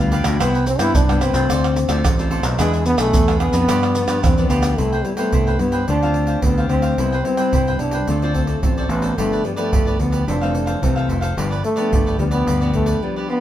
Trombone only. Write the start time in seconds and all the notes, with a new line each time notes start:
Already playing: B3
0.41 B3
0.67 C4
0.79 E4
0.95 D4
1.21 C4
2.59 G#3
2.86 B3
2.98 A3
3.40 B3
4.23 C4
4.49 B3
4.77 A3
5.04 G3
5.17 A3
5.59 B3
5.87 D4
6.42 B3
6.69 C4
7.24 C4
7.79 D4
8.35 C4
8.47 A3
8.63 C4
8.89 B3
9.18 A3
9.45 G3
9.57 A3
10.00 B3
10.28 D4
10.83 C4
11.65 A3
12.19 G3
12.32 B3
12.75 A3
13.03 G3
13.30 B3